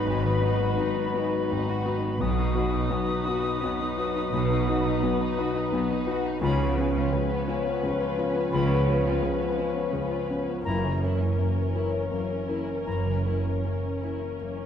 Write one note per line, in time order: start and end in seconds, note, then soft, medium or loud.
0.00 0.23 D#3 soft
0.00 2.15 F#3 medium
0.00 0.41 B3 soft
0.00 0.59 D#4 soft
0.00 2.15 D#4 medium
0.00 0.76 F#4 medium
0.00 2.15 F#4 medium
0.00 2.15 B4 medium
0.00 1.12 D#5 medium
0.00 1.30 F#5 medium
0.00 2.22 B5 medium
0.05 0.41 G#1 medium
0.05 0.66 G#1 medium
0.05 0.41 G#2 medium
0.05 2.22 G#2 medium
0.05 0.66 G#2 medium
0.05 0.23 G#3 medium
0.24 2.22 D#3 medium
0.24 0.42 B3 medium
0.42 0.74 B3 soft
0.42 2.54 B3 medium
0.42 0.75 D#4 soft
0.42 0.60 D#4 medium
0.42 0.75 F#4 medium
0.60 2.01 D#4 medium
0.60 0.78 F#4 medium
0.77 1.12 G#1 medium
0.77 1.12 G#2 medium
0.77 0.96 D#4 medium
0.77 1.83 F#4 medium
0.97 1.14 B3 medium
1.14 1.32 G#3 medium
1.14 1.45 B3 soft
1.14 1.46 D#4 soft
1.14 1.46 F#4 soft
1.14 1.49 D#5 medium
1.31 1.49 B3 medium
1.31 3.43 F#5 medium
1.50 1.84 G#1 medium
1.50 1.84 G#2 medium
1.50 1.67 D#4 medium
1.50 3.25 D#5 medium
1.69 1.85 F#4 medium
1.84 2.17 B3 medium
1.84 2.17 D#4 medium
1.84 2.03 D#4 medium
1.84 2.89 F#4 medium
1.84 2.17 F#4 medium
2.02 2.20 B3 medium
2.02 2.71 D#4 medium
2.19 2.79 B1 medium
2.19 2.54 B1 medium
2.19 4.31 B2 medium
2.19 2.79 B2 medium
2.19 2.54 B2 medium
2.19 6.26 F#3 medium
2.19 2.37 B3 medium
2.19 6.38 D#4 medium
2.19 6.24 F#4 medium
2.19 6.38 B4 medium
2.19 6.26 B4 medium
2.19 6.15 D#6 medium
2.37 4.48 F#3 soft
2.37 2.56 D#4 medium
2.55 4.66 B3 soft
2.55 2.87 B3 soft
2.55 2.87 D#4 soft
2.55 2.87 F#4 soft
2.55 2.73 F#4 medium
2.72 4.14 D#4 medium
2.72 2.91 D#4 medium
2.90 3.25 B1 medium
2.90 3.25 B2 medium
2.90 3.09 B3 medium
2.90 3.96 F#4 medium
3.08 3.26 D#4 medium
3.08 3.79 B4 soft
3.25 3.59 B3 soft
3.25 3.59 D#4 soft
3.25 3.44 F#4 medium
3.25 3.60 F#4 soft
3.25 3.61 D#5 medium
3.43 3.61 D#4 medium
3.43 5.54 F#5 medium
3.62 3.97 B1 medium
3.62 3.97 B2 medium
3.62 3.79 B3 medium
3.62 5.36 D#5 medium
3.79 3.97 D#4 medium
3.79 5.19 B4 medium
3.97 4.29 B3 medium
3.97 4.29 D#4 medium
3.97 5.01 F#4 medium
3.97 4.15 F#4 medium
3.97 4.29 F#4 medium
4.15 4.83 D#4 medium
4.15 4.32 D#4 medium
4.32 4.90 B1 medium
4.32 4.66 B1 medium
4.32 4.90 B2 medium
4.32 6.44 B2 medium
4.32 4.66 B2 medium
4.32 4.48 B3 medium
4.49 6.44 F#3 medium
4.49 4.67 D#4 medium
4.67 6.75 B3 medium
4.67 4.99 B3 soft
4.67 4.99 D#4 medium
4.67 4.85 F#4 medium
4.67 5.00 F#4 medium
4.84 6.23 D#4 medium
4.84 5.02 D#4 medium
5.02 5.36 B1 medium
5.02 5.36 B2 medium
5.02 5.20 B3 medium
5.02 6.05 F#4 medium
5.20 5.37 D#4 medium
5.20 5.89 B4 medium
5.38 5.69 B3 medium
5.38 5.70 D#4 soft
5.38 5.55 F#4 medium
5.38 5.70 F#4 medium
5.38 5.72 D#5 medium
5.55 5.73 D#4 medium
5.55 6.44 F#5 medium
5.72 6.06 B1 medium
5.72 6.06 B2 medium
5.72 5.91 B3 medium
5.72 6.45 D#5 medium
5.90 6.08 D#4 medium
5.90 7.28 B4 medium
6.07 6.38 B3 medium
6.07 6.38 D#4 medium
6.07 6.44 F#4 medium
6.07 6.38 F#4 medium
6.07 6.25 F#4 medium
6.25 6.44 D#4 medium
6.25 6.42 D#4 medium
6.41 6.75 C#2 medium
6.41 7.00 C#2 medium
6.41 6.99 C#3 medium
6.41 6.75 C#3 medium
6.41 8.51 C#3 medium
6.41 10.62 F3 medium
6.41 6.58 G#3 medium
6.41 10.62 C#4 medium
6.41 6.65 F4 medium
6.41 10.61 B4 medium
6.41 10.63 B4 medium
6.41 6.75 B5 medium
6.60 8.69 G#3 medium
6.60 6.78 B3 medium
6.77 8.87 B3 medium
6.77 7.08 B3 soft
6.77 7.09 C#4 medium
6.77 6.95 C#4 medium
6.77 7.09 F4 medium
6.94 8.33 C#4 medium
6.94 7.13 F4 medium
7.11 7.46 C#2 medium
7.11 7.46 C#3 medium
7.11 7.29 C#4 medium
7.11 8.16 F4 medium
7.29 7.47 B3 medium
7.29 7.98 B4 medium
7.48 7.65 G#3 medium
7.48 7.79 B3 soft
7.48 7.79 C#4 soft
7.48 7.79 F4 soft
7.48 7.80 C#5 medium
7.64 7.82 B3 medium
7.64 9.75 F5 medium
7.82 8.17 C#2 medium
7.82 8.17 C#3 medium
7.82 8.00 C#4 medium
7.82 9.57 C#5 medium
7.99 8.17 F4 medium
7.99 9.39 B4 medium
8.18 8.50 B3 medium
8.18 8.50 C#4 medium
8.18 8.36 C#4 medium
8.18 9.21 F4 medium
8.18 8.50 F4 medium
8.35 8.53 B3 medium
8.35 9.04 C#4 soft
8.52 9.11 C#2 medium
8.52 8.87 C#2 medium
8.52 10.68 C#3 medium
8.52 9.11 C#3 medium
8.52 8.87 C#3 medium
8.52 8.69 G#3 medium
8.52 8.77 F4 medium
8.52 8.85 B5 medium
8.70 10.68 G#3 medium
8.70 8.88 B3 medium
8.88 10.69 B3 medium
8.88 9.20 B3 soft
8.88 9.20 C#4 medium
8.88 9.06 C#4 medium
8.88 9.20 F4 soft
9.06 10.46 C#4 medium
9.06 9.23 F4 medium
9.22 9.57 C#2 medium
9.22 9.56 C#3 medium
9.22 9.40 C#4 medium
9.22 10.28 F4 medium
9.40 9.58 B3 medium
9.40 10.10 B4 medium
9.57 9.75 G#3 medium
9.57 9.90 B3 soft
9.57 9.90 C#4 soft
9.57 9.90 F4 soft
9.57 9.93 C#5 medium
9.74 9.93 B3 medium
9.74 10.69 F5 medium
9.91 10.28 C#2 medium
9.91 10.28 C#3 medium
9.91 10.10 C#4 medium
9.91 11.73 C#5 medium
10.10 10.29 F4 medium
10.10 10.68 B4 soft
10.28 10.62 B3 soft
10.28 10.47 C#4 medium
10.28 10.62 C#4 soft
10.28 10.68 F4 soft
10.28 10.62 F4 soft
10.47 10.66 B3 soft
10.47 11.19 C#4 soft
10.65 11.26 F#1 medium
10.65 11.02 F#1 medium
10.65 12.86 F#2 medium
10.65 11.26 F#2 medium
10.65 11.01 F#2 medium
10.65 14.66 E3 medium
10.65 10.83 A#3 medium
10.65 14.66 C#4 medium
10.65 10.91 E4 medium
10.65 14.66 A#4 medium
10.65 10.99 A#5 medium
10.83 13.04 C#3 soft
10.83 11.02 C#4 soft
11.02 13.23 A#3 soft
11.02 11.35 A#3 soft
11.02 11.35 C#4 soft
11.02 11.20 E4 medium
11.02 11.35 E4 soft
11.21 12.66 C#4 soft
11.21 11.38 C#4 soft
11.38 11.73 F#1 soft
11.38 11.73 F#2 soft
11.38 11.56 A#3 soft
11.38 12.48 E4 soft
11.56 11.74 C#4 soft
11.56 12.29 A#4 soft
11.74 12.07 A#3 soft
11.74 12.07 C#4 soft
11.74 11.92 E4 soft
11.74 12.08 E4 soft
11.74 12.10 C#5 soft
11.93 12.11 C#4 soft
11.93 14.18 E5 soft
12.11 12.47 F#1 soft
12.11 12.47 F#2 soft
12.11 12.30 A#3 soft
12.11 14.00 C#5 soft
12.30 12.49 C#4 soft
12.30 13.80 A#4 soft
12.48 12.83 A#3 soft
12.48 12.83 C#4 soft
12.48 12.67 E4 soft
12.48 13.62 E4 soft
12.48 12.83 E4 soft
12.67 13.43 C#4 soft
12.67 12.87 C#4 soft
12.86 13.50 F#1 medium
12.86 13.24 F#1 soft
12.86 13.23 F#2 soft
12.86 13.50 F#2 soft
12.86 14.66 F#2 soft
12.86 13.04 A#3 soft
12.86 13.14 E4 soft
12.86 13.22 A#5 soft
13.05 14.66 C#3 soft
13.05 13.25 C#4 soft
13.25 14.66 A#3 soft
13.25 13.59 A#3 soft
13.25 13.60 C#4 soft
13.25 13.44 E4 soft
13.25 13.59 E4 soft
13.44 14.66 C#4 soft
13.44 13.63 C#4 soft
13.63 14.01 F#1 soft
13.63 14.01 F#2 soft
13.63 13.82 A#3 soft
13.63 14.66 E4 soft
13.82 14.01 C#4 soft
13.82 14.56 A#4 soft
14.01 14.36 A#3 soft
14.01 14.36 C#4 soft
14.01 14.20 E4 soft
14.01 14.36 E4 soft
14.01 14.37 C#5 soft
14.19 14.38 C#4 soft
14.19 14.66 E5 soft
14.38 14.66 F#1 soft
14.38 14.66 F#2 soft
14.38 14.57 A#3 soft
14.38 14.66 C#5 soft
14.57 14.66 C#4 soft
14.57 14.66 A#4 soft